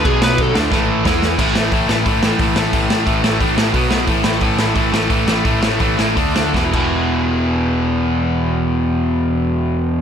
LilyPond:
<<
  \new Staff \with { instrumentName = "Lead electric guitar" } { \time 4/4 \key a \major \tempo 4 = 176 gis'8 b'8 a'8 r2 r8 | \key a \lydian r1 | r1 | r1 |
r1 | r1 | r1 | }
  \new Staff \with { instrumentName = "Distorted electric guitar" } { \clef bass \time 4/4 \key a \major <b, fis b>4. <d a d'>8 <a, e a>4 <e b e'>4 | \key a \lydian <a, e a>8 <a, e a>8 <a, e a>8 <a, e a>8 <a, e a>8 <a, e a>8 <a, e a>8 <a, e a>8 | <a, e a>8 <a, e a>8 <a, e a>8 <a, e a>8 <a, e a>8 <a, e a>8 <b, fis b>8 <b, fis b>8 | <a, e a>8 <a, e a>8 <a, e a>8 <a, e a>8 <a, e a>8 <a, e a>8 <a, e a>8 <a, e a>8 |
<a, e a>8 <a, e a>8 <a, e a>8 <a, e a>8 <d a d'>8 <d a d'>8 <e, b, e>8 <e, b, e>8~ | <e, b, e>1~ | <e, b, e>1 | }
  \new Staff \with { instrumentName = "Distorted electric guitar" } { \clef bass \time 4/4 \key a \major <b, fis b>4. <d a d'>8 <a, e a>4 <e b e'>4 | \key a \lydian <a, e a>8 <a, e a>8 <a, e a>8 <a, e a>8 <a, e a>8 <a, e a>8 <a, e a>8 <a, e a>8 | <a, e a>8 <a, e a>8 <a, e a>8 <a, e a>8 <a, e a>8 <a, e a>8 <b, fis b>8 <b, fis b>8 | <a, e a>8 <a, e a>8 <a, e a>8 <a, e a>8 <a, e a>8 <a, e a>8 <a, e a>8 <a, e a>8 |
<a, e a>8 <a, e a>8 <a, e a>8 <a, e a>8 <d a d'>8 <d a d'>8 <e, b, e>8 <e, b, e>8~ | <e, b, e>1~ | <e, b, e>1 | }
  \new Staff \with { instrumentName = "Picked electric bass" } { \clef bass \time 4/4 \key a \major b,,4. d,8 a,,4 e,4 | \key a \lydian a,,8 a,,8 a,,8 a,,8 a,,8 a,,8 a,,8 a,,8 | a,,8 a,,8 a,,8 a,,8 a,,8 a,,8 b,,8 b,,8 | a,,8 a,,8 a,,8 a,,8 a,,8 a,,8 a,,8 a,,8 |
a,,8 a,,8 a,,8 a,,8 d,8 d,8 e,,8 e,,8~ | e,,1~ | e,,1 | }
  \new DrumStaff \with { instrumentName = "Drums" } \drummode { \time 4/4 <cymc bd>8 sn8 <cymc bd>8 sn8 <bd sn>4 <bd sn>8 sn8 | <cymc bd>8 sn8 <hho bd>8 sn8 <hho bd>8 sn8 <hho bd>8 sn8 | <hho bd>8 sn8 <hho bd>8 sn8 <hho bd>8 sn8 <hho bd>8 sn8 | <hho bd>8 sn8 <hho bd>8 sn8 <hho bd>8 sn8 <hho bd>8 sn8 |
<hho bd>8 sn8 <hho bd>8 sn8 <hho bd>8 sn8 <bd sn>8 <cymc bd>8 | r4 r4 r4 r4 | r4 r4 r4 r4 | }
>>